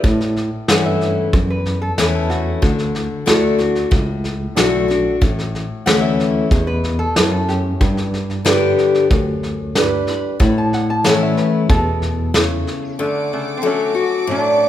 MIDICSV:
0, 0, Header, 1, 7, 480
1, 0, Start_track
1, 0, Key_signature, 2, "major"
1, 0, Tempo, 647249
1, 30, Time_signature, 4, 2, 24, 8
1, 10893, End_track
2, 0, Start_track
2, 0, Title_t, "Violin section"
2, 0, Program_c, 0, 48
2, 9634, Note_on_c, 0, 86, 91
2, 9635, Note_on_c, 0, 69, 80
2, 9643, Note_on_c, 0, 78, 66
2, 10893, Note_off_c, 0, 69, 0
2, 10893, Note_off_c, 0, 78, 0
2, 10893, Note_off_c, 0, 86, 0
2, 10893, End_track
3, 0, Start_track
3, 0, Title_t, "Resonator guitar played with a steel bar"
3, 0, Program_c, 1, 25
3, 505, Note_on_c, 1, 78, 91
3, 624, Note_off_c, 1, 78, 0
3, 634, Note_on_c, 1, 76, 91
3, 1098, Note_off_c, 1, 76, 0
3, 1115, Note_on_c, 1, 71, 84
3, 1344, Note_off_c, 1, 71, 0
3, 1347, Note_on_c, 1, 69, 92
3, 1465, Note_off_c, 1, 69, 0
3, 1478, Note_on_c, 1, 71, 82
3, 1591, Note_off_c, 1, 71, 0
3, 1593, Note_on_c, 1, 69, 70
3, 1704, Note_on_c, 1, 66, 97
3, 1708, Note_off_c, 1, 69, 0
3, 3119, Note_off_c, 1, 66, 0
3, 4344, Note_on_c, 1, 78, 96
3, 4460, Note_off_c, 1, 78, 0
3, 4463, Note_on_c, 1, 76, 98
3, 4934, Note_off_c, 1, 76, 0
3, 4947, Note_on_c, 1, 71, 100
3, 5180, Note_off_c, 1, 71, 0
3, 5183, Note_on_c, 1, 69, 103
3, 5305, Note_off_c, 1, 69, 0
3, 5315, Note_on_c, 1, 71, 78
3, 5425, Note_on_c, 1, 69, 91
3, 5431, Note_off_c, 1, 71, 0
3, 5546, Note_off_c, 1, 69, 0
3, 5552, Note_on_c, 1, 67, 93
3, 6964, Note_off_c, 1, 67, 0
3, 7486, Note_on_c, 1, 83, 102
3, 7597, Note_off_c, 1, 83, 0
3, 7728, Note_on_c, 1, 83, 93
3, 7838, Note_off_c, 1, 83, 0
3, 7846, Note_on_c, 1, 81, 88
3, 7957, Note_off_c, 1, 81, 0
3, 7963, Note_on_c, 1, 78, 93
3, 8076, Note_off_c, 1, 78, 0
3, 8083, Note_on_c, 1, 81, 101
3, 8196, Note_off_c, 1, 81, 0
3, 8201, Note_on_c, 1, 78, 84
3, 8315, Note_off_c, 1, 78, 0
3, 8326, Note_on_c, 1, 76, 88
3, 8433, Note_on_c, 1, 71, 82
3, 8437, Note_off_c, 1, 76, 0
3, 8667, Note_off_c, 1, 71, 0
3, 8672, Note_on_c, 1, 69, 111
3, 9604, Note_off_c, 1, 69, 0
3, 9641, Note_on_c, 1, 57, 83
3, 9644, Note_on_c, 1, 50, 75
3, 9862, Note_off_c, 1, 50, 0
3, 9877, Note_off_c, 1, 57, 0
3, 9886, Note_on_c, 1, 49, 75
3, 9888, Note_on_c, 1, 57, 85
3, 10055, Note_off_c, 1, 49, 0
3, 10066, Note_on_c, 1, 60, 79
3, 10073, Note_off_c, 1, 57, 0
3, 10116, Note_off_c, 1, 60, 0
3, 10129, Note_on_c, 1, 54, 77
3, 10131, Note_on_c, 1, 61, 88
3, 10571, Note_off_c, 1, 54, 0
3, 10602, Note_on_c, 1, 54, 83
3, 10610, Note_off_c, 1, 61, 0
3, 10613, Note_on_c, 1, 62, 107
3, 10893, Note_off_c, 1, 54, 0
3, 10893, Note_off_c, 1, 62, 0
3, 10893, End_track
4, 0, Start_track
4, 0, Title_t, "Grand piano"
4, 0, Program_c, 2, 0
4, 2424, Note_on_c, 2, 62, 83
4, 2426, Note_on_c, 2, 66, 81
4, 2429, Note_on_c, 2, 69, 89
4, 2847, Note_off_c, 2, 62, 0
4, 2848, Note_off_c, 2, 66, 0
4, 2850, Note_off_c, 2, 69, 0
4, 3377, Note_on_c, 2, 62, 79
4, 3380, Note_on_c, 2, 66, 72
4, 3384, Note_on_c, 2, 69, 90
4, 3804, Note_off_c, 2, 62, 0
4, 3806, Note_off_c, 2, 66, 0
4, 3808, Note_off_c, 2, 69, 0
4, 4347, Note_on_c, 2, 61, 80
4, 4351, Note_on_c, 2, 64, 61
4, 4353, Note_on_c, 2, 69, 84
4, 4770, Note_off_c, 2, 61, 0
4, 4772, Note_off_c, 2, 64, 0
4, 4773, Note_off_c, 2, 69, 0
4, 5306, Note_on_c, 2, 61, 68
4, 5312, Note_on_c, 2, 64, 66
4, 5314, Note_on_c, 2, 69, 73
4, 5730, Note_off_c, 2, 61, 0
4, 5733, Note_off_c, 2, 64, 0
4, 5734, Note_off_c, 2, 69, 0
4, 6271, Note_on_c, 2, 62, 97
4, 6275, Note_on_c, 2, 67, 81
4, 6278, Note_on_c, 2, 71, 102
4, 6693, Note_off_c, 2, 62, 0
4, 6694, Note_off_c, 2, 67, 0
4, 6696, Note_off_c, 2, 71, 0
4, 7240, Note_on_c, 2, 62, 90
4, 7241, Note_on_c, 2, 67, 81
4, 7244, Note_on_c, 2, 71, 98
4, 7657, Note_off_c, 2, 62, 0
4, 7658, Note_off_c, 2, 67, 0
4, 7659, Note_off_c, 2, 71, 0
4, 8199, Note_on_c, 2, 64, 81
4, 8203, Note_on_c, 2, 69, 69
4, 8207, Note_on_c, 2, 73, 79
4, 8616, Note_off_c, 2, 64, 0
4, 8618, Note_off_c, 2, 69, 0
4, 8621, Note_off_c, 2, 73, 0
4, 9152, Note_on_c, 2, 64, 72
4, 9159, Note_on_c, 2, 69, 70
4, 9162, Note_on_c, 2, 73, 71
4, 9572, Note_off_c, 2, 64, 0
4, 9576, Note_off_c, 2, 69, 0
4, 9577, Note_off_c, 2, 73, 0
4, 10893, End_track
5, 0, Start_track
5, 0, Title_t, "Steel-string acoustic guitar"
5, 0, Program_c, 3, 25
5, 27, Note_on_c, 3, 45, 91
5, 510, Note_on_c, 3, 52, 80
5, 517, Note_on_c, 3, 57, 79
5, 518, Note_on_c, 3, 61, 82
5, 524, Note_on_c, 3, 64, 84
5, 941, Note_off_c, 3, 45, 0
5, 966, Note_off_c, 3, 52, 0
5, 970, Note_off_c, 3, 57, 0
5, 970, Note_off_c, 3, 61, 0
5, 973, Note_off_c, 3, 64, 0
5, 989, Note_on_c, 3, 40, 80
5, 1469, Note_on_c, 3, 52, 81
5, 1470, Note_on_c, 3, 57, 79
5, 1475, Note_on_c, 3, 61, 90
5, 1479, Note_on_c, 3, 64, 94
5, 1902, Note_off_c, 3, 40, 0
5, 1926, Note_off_c, 3, 52, 0
5, 1926, Note_off_c, 3, 57, 0
5, 1929, Note_off_c, 3, 61, 0
5, 1931, Note_off_c, 3, 64, 0
5, 1943, Note_on_c, 3, 50, 87
5, 2407, Note_off_c, 3, 50, 0
5, 2416, Note_on_c, 3, 50, 81
5, 2421, Note_on_c, 3, 57, 92
5, 2429, Note_on_c, 3, 62, 85
5, 2430, Note_on_c, 3, 66, 89
5, 2649, Note_off_c, 3, 66, 0
5, 2654, Note_off_c, 3, 50, 0
5, 2657, Note_off_c, 3, 57, 0
5, 2658, Note_on_c, 3, 66, 51
5, 2661, Note_off_c, 3, 62, 0
5, 2674, Note_on_c, 3, 62, 44
5, 2895, Note_off_c, 3, 66, 0
5, 2900, Note_on_c, 3, 45, 78
5, 2903, Note_off_c, 3, 62, 0
5, 3385, Note_on_c, 3, 50, 83
5, 3389, Note_on_c, 3, 57, 90
5, 3393, Note_on_c, 3, 62, 93
5, 3397, Note_on_c, 3, 66, 99
5, 3612, Note_off_c, 3, 66, 0
5, 3619, Note_off_c, 3, 50, 0
5, 3621, Note_off_c, 3, 57, 0
5, 3621, Note_on_c, 3, 66, 50
5, 3623, Note_off_c, 3, 62, 0
5, 3638, Note_on_c, 3, 62, 46
5, 3819, Note_off_c, 3, 45, 0
5, 3857, Note_off_c, 3, 66, 0
5, 3866, Note_off_c, 3, 62, 0
5, 3867, Note_on_c, 3, 45, 81
5, 4346, Note_on_c, 3, 52, 78
5, 4355, Note_on_c, 3, 57, 87
5, 4357, Note_on_c, 3, 61, 94
5, 4357, Note_on_c, 3, 64, 94
5, 4783, Note_off_c, 3, 45, 0
5, 4806, Note_off_c, 3, 52, 0
5, 4810, Note_off_c, 3, 57, 0
5, 4811, Note_off_c, 3, 61, 0
5, 4812, Note_off_c, 3, 64, 0
5, 4834, Note_on_c, 3, 47, 79
5, 5290, Note_off_c, 3, 47, 0
5, 5313, Note_on_c, 3, 45, 83
5, 5770, Note_off_c, 3, 45, 0
5, 5792, Note_on_c, 3, 43, 90
5, 6264, Note_on_c, 3, 50, 89
5, 6270, Note_on_c, 3, 55, 91
5, 6273, Note_on_c, 3, 59, 84
5, 6279, Note_on_c, 3, 67, 96
5, 6706, Note_off_c, 3, 43, 0
5, 6726, Note_off_c, 3, 50, 0
5, 6729, Note_off_c, 3, 55, 0
5, 6730, Note_off_c, 3, 59, 0
5, 6733, Note_off_c, 3, 67, 0
5, 6756, Note_on_c, 3, 42, 83
5, 7212, Note_off_c, 3, 42, 0
5, 7236, Note_on_c, 3, 43, 96
5, 7692, Note_off_c, 3, 43, 0
5, 7710, Note_on_c, 3, 45, 91
5, 8190, Note_on_c, 3, 52, 86
5, 8197, Note_on_c, 3, 57, 91
5, 8201, Note_on_c, 3, 61, 90
5, 8206, Note_on_c, 3, 64, 97
5, 8624, Note_off_c, 3, 45, 0
5, 8648, Note_off_c, 3, 52, 0
5, 8652, Note_off_c, 3, 57, 0
5, 8654, Note_off_c, 3, 61, 0
5, 8656, Note_off_c, 3, 64, 0
5, 8674, Note_on_c, 3, 47, 82
5, 9131, Note_off_c, 3, 47, 0
5, 9152, Note_on_c, 3, 49, 86
5, 9609, Note_off_c, 3, 49, 0
5, 9634, Note_on_c, 3, 50, 97
5, 10090, Note_off_c, 3, 50, 0
5, 10099, Note_on_c, 3, 50, 75
5, 10106, Note_on_c, 3, 57, 97
5, 10110, Note_on_c, 3, 66, 85
5, 10334, Note_off_c, 3, 66, 0
5, 10337, Note_off_c, 3, 50, 0
5, 10340, Note_off_c, 3, 57, 0
5, 10343, Note_on_c, 3, 66, 62
5, 10578, Note_off_c, 3, 66, 0
5, 10585, Note_on_c, 3, 45, 86
5, 10893, Note_off_c, 3, 45, 0
5, 10893, End_track
6, 0, Start_track
6, 0, Title_t, "Tine electric piano"
6, 0, Program_c, 4, 4
6, 24, Note_on_c, 4, 45, 88
6, 362, Note_off_c, 4, 45, 0
6, 505, Note_on_c, 4, 43, 85
6, 915, Note_off_c, 4, 43, 0
6, 989, Note_on_c, 4, 42, 76
6, 1398, Note_off_c, 4, 42, 0
6, 1468, Note_on_c, 4, 40, 75
6, 1877, Note_off_c, 4, 40, 0
6, 1943, Note_on_c, 4, 38, 81
6, 2282, Note_off_c, 4, 38, 0
6, 2428, Note_on_c, 4, 38, 79
6, 2838, Note_off_c, 4, 38, 0
6, 2903, Note_on_c, 4, 37, 88
6, 3315, Note_off_c, 4, 37, 0
6, 3386, Note_on_c, 4, 35, 81
6, 3797, Note_off_c, 4, 35, 0
6, 3868, Note_on_c, 4, 33, 91
6, 4207, Note_off_c, 4, 33, 0
6, 4351, Note_on_c, 4, 38, 84
6, 4760, Note_off_c, 4, 38, 0
6, 4827, Note_on_c, 4, 40, 91
6, 5238, Note_off_c, 4, 40, 0
6, 5312, Note_on_c, 4, 42, 88
6, 5721, Note_off_c, 4, 42, 0
6, 5788, Note_on_c, 4, 43, 90
6, 6463, Note_off_c, 4, 43, 0
6, 6748, Note_on_c, 4, 38, 84
6, 7423, Note_off_c, 4, 38, 0
6, 7712, Note_on_c, 4, 45, 87
6, 8385, Note_off_c, 4, 45, 0
6, 8671, Note_on_c, 4, 40, 91
6, 9344, Note_off_c, 4, 40, 0
6, 10893, End_track
7, 0, Start_track
7, 0, Title_t, "Drums"
7, 27, Note_on_c, 9, 38, 29
7, 29, Note_on_c, 9, 36, 103
7, 101, Note_off_c, 9, 38, 0
7, 103, Note_off_c, 9, 36, 0
7, 152, Note_on_c, 9, 38, 33
7, 226, Note_off_c, 9, 38, 0
7, 269, Note_on_c, 9, 38, 37
7, 344, Note_off_c, 9, 38, 0
7, 507, Note_on_c, 9, 38, 106
7, 507, Note_on_c, 9, 44, 81
7, 581, Note_off_c, 9, 38, 0
7, 581, Note_off_c, 9, 44, 0
7, 748, Note_on_c, 9, 38, 31
7, 822, Note_off_c, 9, 38, 0
7, 988, Note_on_c, 9, 36, 112
7, 988, Note_on_c, 9, 38, 34
7, 1062, Note_off_c, 9, 36, 0
7, 1062, Note_off_c, 9, 38, 0
7, 1227, Note_on_c, 9, 38, 34
7, 1301, Note_off_c, 9, 38, 0
7, 1468, Note_on_c, 9, 38, 100
7, 1468, Note_on_c, 9, 44, 74
7, 1542, Note_off_c, 9, 38, 0
7, 1542, Note_off_c, 9, 44, 0
7, 1709, Note_on_c, 9, 38, 34
7, 1783, Note_off_c, 9, 38, 0
7, 1947, Note_on_c, 9, 36, 103
7, 1948, Note_on_c, 9, 38, 35
7, 2021, Note_off_c, 9, 36, 0
7, 2022, Note_off_c, 9, 38, 0
7, 2065, Note_on_c, 9, 38, 29
7, 2139, Note_off_c, 9, 38, 0
7, 2186, Note_on_c, 9, 38, 36
7, 2260, Note_off_c, 9, 38, 0
7, 2426, Note_on_c, 9, 38, 105
7, 2426, Note_on_c, 9, 44, 81
7, 2500, Note_off_c, 9, 38, 0
7, 2500, Note_off_c, 9, 44, 0
7, 2661, Note_on_c, 9, 38, 33
7, 2736, Note_off_c, 9, 38, 0
7, 2782, Note_on_c, 9, 38, 31
7, 2856, Note_off_c, 9, 38, 0
7, 2901, Note_on_c, 9, 38, 35
7, 2905, Note_on_c, 9, 36, 111
7, 2975, Note_off_c, 9, 38, 0
7, 2979, Note_off_c, 9, 36, 0
7, 3144, Note_on_c, 9, 38, 34
7, 3219, Note_off_c, 9, 38, 0
7, 3389, Note_on_c, 9, 38, 102
7, 3389, Note_on_c, 9, 44, 82
7, 3463, Note_off_c, 9, 38, 0
7, 3463, Note_off_c, 9, 44, 0
7, 3631, Note_on_c, 9, 38, 34
7, 3705, Note_off_c, 9, 38, 0
7, 3870, Note_on_c, 9, 36, 103
7, 3870, Note_on_c, 9, 38, 30
7, 3944, Note_off_c, 9, 36, 0
7, 3944, Note_off_c, 9, 38, 0
7, 3994, Note_on_c, 9, 38, 33
7, 4068, Note_off_c, 9, 38, 0
7, 4115, Note_on_c, 9, 38, 34
7, 4189, Note_off_c, 9, 38, 0
7, 4354, Note_on_c, 9, 38, 106
7, 4354, Note_on_c, 9, 44, 81
7, 4428, Note_off_c, 9, 38, 0
7, 4428, Note_off_c, 9, 44, 0
7, 4594, Note_on_c, 9, 38, 32
7, 4668, Note_off_c, 9, 38, 0
7, 4828, Note_on_c, 9, 38, 37
7, 4829, Note_on_c, 9, 36, 117
7, 4903, Note_off_c, 9, 36, 0
7, 4903, Note_off_c, 9, 38, 0
7, 5069, Note_on_c, 9, 38, 34
7, 5144, Note_off_c, 9, 38, 0
7, 5311, Note_on_c, 9, 38, 104
7, 5311, Note_on_c, 9, 44, 76
7, 5385, Note_off_c, 9, 38, 0
7, 5385, Note_off_c, 9, 44, 0
7, 5552, Note_on_c, 9, 38, 34
7, 5626, Note_off_c, 9, 38, 0
7, 5790, Note_on_c, 9, 38, 31
7, 5791, Note_on_c, 9, 36, 107
7, 5864, Note_off_c, 9, 38, 0
7, 5865, Note_off_c, 9, 36, 0
7, 5911, Note_on_c, 9, 38, 35
7, 5986, Note_off_c, 9, 38, 0
7, 6034, Note_on_c, 9, 38, 38
7, 6109, Note_off_c, 9, 38, 0
7, 6154, Note_on_c, 9, 38, 29
7, 6228, Note_off_c, 9, 38, 0
7, 6271, Note_on_c, 9, 38, 110
7, 6271, Note_on_c, 9, 44, 93
7, 6345, Note_off_c, 9, 38, 0
7, 6345, Note_off_c, 9, 44, 0
7, 6513, Note_on_c, 9, 38, 31
7, 6587, Note_off_c, 9, 38, 0
7, 6633, Note_on_c, 9, 38, 33
7, 6707, Note_off_c, 9, 38, 0
7, 6751, Note_on_c, 9, 38, 35
7, 6753, Note_on_c, 9, 36, 105
7, 6825, Note_off_c, 9, 38, 0
7, 6827, Note_off_c, 9, 36, 0
7, 6994, Note_on_c, 9, 38, 34
7, 7068, Note_off_c, 9, 38, 0
7, 7233, Note_on_c, 9, 38, 102
7, 7233, Note_on_c, 9, 44, 76
7, 7308, Note_off_c, 9, 38, 0
7, 7308, Note_off_c, 9, 44, 0
7, 7468, Note_on_c, 9, 38, 33
7, 7542, Note_off_c, 9, 38, 0
7, 7712, Note_on_c, 9, 38, 30
7, 7714, Note_on_c, 9, 36, 110
7, 7787, Note_off_c, 9, 38, 0
7, 7788, Note_off_c, 9, 36, 0
7, 7956, Note_on_c, 9, 38, 39
7, 8030, Note_off_c, 9, 38, 0
7, 8191, Note_on_c, 9, 38, 107
7, 8191, Note_on_c, 9, 44, 85
7, 8265, Note_off_c, 9, 38, 0
7, 8265, Note_off_c, 9, 44, 0
7, 8434, Note_on_c, 9, 38, 35
7, 8508, Note_off_c, 9, 38, 0
7, 8671, Note_on_c, 9, 38, 35
7, 8674, Note_on_c, 9, 36, 119
7, 8745, Note_off_c, 9, 38, 0
7, 8748, Note_off_c, 9, 36, 0
7, 8913, Note_on_c, 9, 38, 33
7, 8987, Note_off_c, 9, 38, 0
7, 9153, Note_on_c, 9, 38, 97
7, 9153, Note_on_c, 9, 44, 75
7, 9227, Note_off_c, 9, 38, 0
7, 9227, Note_off_c, 9, 44, 0
7, 9397, Note_on_c, 9, 38, 35
7, 9471, Note_off_c, 9, 38, 0
7, 10893, End_track
0, 0, End_of_file